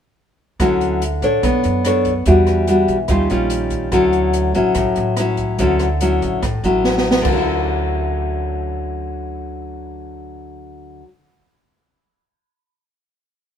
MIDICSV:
0, 0, Header, 1, 4, 480
1, 0, Start_track
1, 0, Key_signature, 2, "major"
1, 0, Tempo, 415800
1, 693, Time_signature, 4, 2, 24, 8
1, 15674, End_track
2, 0, Start_track
2, 0, Title_t, "Nylon-string guitar"
2, 0, Program_c, 0, 24
2, 696, Note_on_c, 0, 54, 54
2, 699, Note_on_c, 0, 50, 51
2, 705, Note_on_c, 0, 61, 58
2, 711, Note_on_c, 0, 64, 51
2, 1173, Note_off_c, 0, 54, 0
2, 1177, Note_off_c, 0, 61, 0
2, 1177, Note_off_c, 0, 64, 0
2, 1424, Note_on_c, 0, 62, 57
2, 1430, Note_on_c, 0, 73, 64
2, 1432, Note_on_c, 0, 69, 53
2, 1636, Note_off_c, 0, 50, 0
2, 1662, Note_on_c, 0, 59, 57
2, 2104, Note_off_c, 0, 62, 0
2, 2104, Note_off_c, 0, 73, 0
2, 2107, Note_off_c, 0, 69, 0
2, 2141, Note_on_c, 0, 62, 48
2, 2150, Note_on_c, 0, 69, 47
2, 2152, Note_on_c, 0, 73, 56
2, 2449, Note_off_c, 0, 62, 0
2, 2454, Note_off_c, 0, 69, 0
2, 2454, Note_off_c, 0, 73, 0
2, 2597, Note_off_c, 0, 59, 0
2, 2620, Note_on_c, 0, 52, 55
2, 2622, Note_on_c, 0, 55, 53
2, 2629, Note_on_c, 0, 62, 52
2, 2631, Note_on_c, 0, 66, 58
2, 3063, Note_off_c, 0, 55, 0
2, 3064, Note_off_c, 0, 62, 0
2, 3068, Note_off_c, 0, 66, 0
2, 3093, Note_on_c, 0, 55, 46
2, 3100, Note_on_c, 0, 62, 53
2, 3106, Note_on_c, 0, 66, 52
2, 3420, Note_off_c, 0, 55, 0
2, 3424, Note_off_c, 0, 62, 0
2, 3424, Note_off_c, 0, 66, 0
2, 3559, Note_off_c, 0, 52, 0
2, 3569, Note_on_c, 0, 51, 49
2, 3571, Note_on_c, 0, 55, 56
2, 3577, Note_on_c, 0, 61, 52
2, 3579, Note_on_c, 0, 65, 61
2, 3777, Note_off_c, 0, 55, 0
2, 3778, Note_off_c, 0, 61, 0
2, 3782, Note_off_c, 0, 65, 0
2, 3814, Note_on_c, 0, 55, 52
2, 3823, Note_on_c, 0, 61, 58
2, 3827, Note_on_c, 0, 65, 69
2, 4501, Note_off_c, 0, 55, 0
2, 4505, Note_off_c, 0, 61, 0
2, 4507, Note_off_c, 0, 65, 0
2, 4514, Note_off_c, 0, 51, 0
2, 4532, Note_on_c, 0, 50, 55
2, 4534, Note_on_c, 0, 54, 62
2, 4541, Note_on_c, 0, 61, 54
2, 4545, Note_on_c, 0, 64, 64
2, 5220, Note_off_c, 0, 54, 0
2, 5222, Note_off_c, 0, 61, 0
2, 5226, Note_off_c, 0, 64, 0
2, 5252, Note_on_c, 0, 54, 54
2, 5260, Note_on_c, 0, 61, 57
2, 5264, Note_on_c, 0, 64, 66
2, 5475, Note_off_c, 0, 50, 0
2, 5501, Note_on_c, 0, 45, 56
2, 5941, Note_off_c, 0, 54, 0
2, 5942, Note_off_c, 0, 61, 0
2, 5946, Note_off_c, 0, 64, 0
2, 5993, Note_on_c, 0, 54, 50
2, 5997, Note_on_c, 0, 61, 50
2, 6001, Note_on_c, 0, 64, 54
2, 6431, Note_off_c, 0, 54, 0
2, 6431, Note_off_c, 0, 61, 0
2, 6434, Note_off_c, 0, 64, 0
2, 6439, Note_off_c, 0, 45, 0
2, 6460, Note_on_c, 0, 54, 57
2, 6466, Note_on_c, 0, 50, 55
2, 6469, Note_on_c, 0, 61, 57
2, 6476, Note_on_c, 0, 64, 58
2, 6771, Note_off_c, 0, 54, 0
2, 6775, Note_off_c, 0, 61, 0
2, 6779, Note_off_c, 0, 64, 0
2, 6941, Note_on_c, 0, 54, 50
2, 6949, Note_on_c, 0, 61, 49
2, 6955, Note_on_c, 0, 64, 57
2, 7401, Note_off_c, 0, 50, 0
2, 7419, Note_off_c, 0, 54, 0
2, 7423, Note_off_c, 0, 61, 0
2, 7426, Note_off_c, 0, 64, 0
2, 7426, Note_on_c, 0, 45, 53
2, 7671, Note_on_c, 0, 54, 57
2, 7678, Note_on_c, 0, 61, 55
2, 7679, Note_on_c, 0, 64, 61
2, 8329, Note_on_c, 0, 50, 57
2, 8348, Note_off_c, 0, 54, 0
2, 8349, Note_off_c, 0, 61, 0
2, 8352, Note_off_c, 0, 64, 0
2, 8359, Note_off_c, 0, 45, 0
2, 8399, Note_on_c, 0, 54, 56
2, 8454, Note_on_c, 0, 61, 58
2, 8511, Note_on_c, 0, 64, 62
2, 12723, Note_off_c, 0, 50, 0
2, 12794, Note_off_c, 0, 54, 0
2, 12849, Note_off_c, 0, 61, 0
2, 12905, Note_off_c, 0, 64, 0
2, 15674, End_track
3, 0, Start_track
3, 0, Title_t, "Upright bass"
3, 0, Program_c, 1, 32
3, 687, Note_on_c, 1, 38, 83
3, 1366, Note_off_c, 1, 38, 0
3, 1409, Note_on_c, 1, 33, 72
3, 1636, Note_off_c, 1, 33, 0
3, 1651, Note_on_c, 1, 35, 77
3, 1877, Note_off_c, 1, 35, 0
3, 1903, Note_on_c, 1, 42, 79
3, 2576, Note_off_c, 1, 42, 0
3, 2615, Note_on_c, 1, 40, 86
3, 3293, Note_off_c, 1, 40, 0
3, 3327, Note_on_c, 1, 35, 76
3, 3557, Note_off_c, 1, 35, 0
3, 3565, Note_on_c, 1, 39, 73
3, 3796, Note_off_c, 1, 39, 0
3, 3819, Note_on_c, 1, 34, 85
3, 4495, Note_off_c, 1, 34, 0
3, 4521, Note_on_c, 1, 38, 89
3, 5207, Note_off_c, 1, 38, 0
3, 5251, Note_on_c, 1, 33, 69
3, 5480, Note_off_c, 1, 33, 0
3, 5487, Note_on_c, 1, 33, 78
3, 5718, Note_off_c, 1, 33, 0
3, 5742, Note_on_c, 1, 33, 81
3, 6417, Note_off_c, 1, 33, 0
3, 6451, Note_on_c, 1, 38, 90
3, 7131, Note_off_c, 1, 38, 0
3, 7183, Note_on_c, 1, 33, 71
3, 7406, Note_off_c, 1, 33, 0
3, 7415, Note_on_c, 1, 33, 75
3, 7642, Note_off_c, 1, 33, 0
3, 7659, Note_on_c, 1, 33, 79
3, 8334, Note_off_c, 1, 33, 0
3, 8372, Note_on_c, 1, 38, 82
3, 12720, Note_off_c, 1, 38, 0
3, 15674, End_track
4, 0, Start_track
4, 0, Title_t, "Drums"
4, 690, Note_on_c, 9, 36, 51
4, 690, Note_on_c, 9, 37, 57
4, 690, Note_on_c, 9, 42, 35
4, 805, Note_off_c, 9, 36, 0
4, 805, Note_off_c, 9, 37, 0
4, 805, Note_off_c, 9, 42, 0
4, 935, Note_on_c, 9, 42, 24
4, 1051, Note_off_c, 9, 42, 0
4, 1174, Note_on_c, 9, 42, 39
4, 1290, Note_off_c, 9, 42, 0
4, 1411, Note_on_c, 9, 36, 21
4, 1411, Note_on_c, 9, 42, 25
4, 1526, Note_off_c, 9, 42, 0
4, 1527, Note_off_c, 9, 36, 0
4, 1653, Note_on_c, 9, 37, 47
4, 1653, Note_on_c, 9, 42, 35
4, 1654, Note_on_c, 9, 36, 46
4, 1768, Note_off_c, 9, 37, 0
4, 1768, Note_off_c, 9, 42, 0
4, 1769, Note_off_c, 9, 36, 0
4, 1888, Note_on_c, 9, 42, 25
4, 2003, Note_off_c, 9, 42, 0
4, 2131, Note_on_c, 9, 37, 54
4, 2131, Note_on_c, 9, 42, 40
4, 2246, Note_off_c, 9, 37, 0
4, 2246, Note_off_c, 9, 42, 0
4, 2365, Note_on_c, 9, 42, 23
4, 2371, Note_on_c, 9, 36, 21
4, 2480, Note_off_c, 9, 42, 0
4, 2486, Note_off_c, 9, 36, 0
4, 2604, Note_on_c, 9, 42, 39
4, 2612, Note_on_c, 9, 36, 49
4, 2720, Note_off_c, 9, 42, 0
4, 2728, Note_off_c, 9, 36, 0
4, 2846, Note_on_c, 9, 37, 47
4, 2846, Note_on_c, 9, 42, 24
4, 2962, Note_off_c, 9, 37, 0
4, 2962, Note_off_c, 9, 42, 0
4, 3087, Note_on_c, 9, 42, 37
4, 3203, Note_off_c, 9, 42, 0
4, 3328, Note_on_c, 9, 36, 22
4, 3328, Note_on_c, 9, 42, 25
4, 3443, Note_off_c, 9, 36, 0
4, 3443, Note_off_c, 9, 42, 0
4, 3556, Note_on_c, 9, 37, 52
4, 3556, Note_on_c, 9, 42, 34
4, 3565, Note_on_c, 9, 36, 53
4, 3672, Note_off_c, 9, 37, 0
4, 3672, Note_off_c, 9, 42, 0
4, 3681, Note_off_c, 9, 36, 0
4, 3805, Note_on_c, 9, 42, 21
4, 3921, Note_off_c, 9, 42, 0
4, 4039, Note_on_c, 9, 42, 42
4, 4154, Note_off_c, 9, 42, 0
4, 4276, Note_on_c, 9, 42, 24
4, 4285, Note_on_c, 9, 36, 21
4, 4391, Note_off_c, 9, 42, 0
4, 4400, Note_off_c, 9, 36, 0
4, 4523, Note_on_c, 9, 37, 54
4, 4523, Note_on_c, 9, 42, 37
4, 4527, Note_on_c, 9, 36, 52
4, 4638, Note_off_c, 9, 37, 0
4, 4638, Note_off_c, 9, 42, 0
4, 4642, Note_off_c, 9, 36, 0
4, 4765, Note_on_c, 9, 42, 22
4, 4881, Note_off_c, 9, 42, 0
4, 5003, Note_on_c, 9, 42, 37
4, 5119, Note_off_c, 9, 42, 0
4, 5248, Note_on_c, 9, 42, 23
4, 5249, Note_on_c, 9, 36, 21
4, 5363, Note_off_c, 9, 42, 0
4, 5365, Note_off_c, 9, 36, 0
4, 5479, Note_on_c, 9, 37, 50
4, 5479, Note_on_c, 9, 42, 34
4, 5489, Note_on_c, 9, 36, 49
4, 5594, Note_off_c, 9, 37, 0
4, 5594, Note_off_c, 9, 42, 0
4, 5605, Note_off_c, 9, 36, 0
4, 5722, Note_on_c, 9, 42, 25
4, 5837, Note_off_c, 9, 42, 0
4, 5964, Note_on_c, 9, 37, 58
4, 5964, Note_on_c, 9, 42, 43
4, 6079, Note_off_c, 9, 37, 0
4, 6079, Note_off_c, 9, 42, 0
4, 6202, Note_on_c, 9, 42, 23
4, 6211, Note_on_c, 9, 36, 21
4, 6317, Note_off_c, 9, 42, 0
4, 6327, Note_off_c, 9, 36, 0
4, 6448, Note_on_c, 9, 42, 41
4, 6456, Note_on_c, 9, 36, 52
4, 6564, Note_off_c, 9, 42, 0
4, 6571, Note_off_c, 9, 36, 0
4, 6689, Note_on_c, 9, 37, 49
4, 6689, Note_on_c, 9, 42, 25
4, 6804, Note_off_c, 9, 37, 0
4, 6804, Note_off_c, 9, 42, 0
4, 6933, Note_on_c, 9, 42, 39
4, 7048, Note_off_c, 9, 42, 0
4, 7179, Note_on_c, 9, 36, 21
4, 7182, Note_on_c, 9, 42, 23
4, 7295, Note_off_c, 9, 36, 0
4, 7297, Note_off_c, 9, 42, 0
4, 7418, Note_on_c, 9, 37, 50
4, 7418, Note_on_c, 9, 42, 35
4, 7420, Note_on_c, 9, 36, 46
4, 7534, Note_off_c, 9, 37, 0
4, 7534, Note_off_c, 9, 42, 0
4, 7535, Note_off_c, 9, 36, 0
4, 7662, Note_on_c, 9, 42, 22
4, 7778, Note_off_c, 9, 42, 0
4, 7901, Note_on_c, 9, 38, 38
4, 8016, Note_off_c, 9, 38, 0
4, 8054, Note_on_c, 9, 38, 38
4, 8170, Note_off_c, 9, 38, 0
4, 8207, Note_on_c, 9, 38, 56
4, 8322, Note_off_c, 9, 38, 0
4, 8366, Note_on_c, 9, 49, 59
4, 8371, Note_on_c, 9, 36, 64
4, 8482, Note_off_c, 9, 49, 0
4, 8487, Note_off_c, 9, 36, 0
4, 15674, End_track
0, 0, End_of_file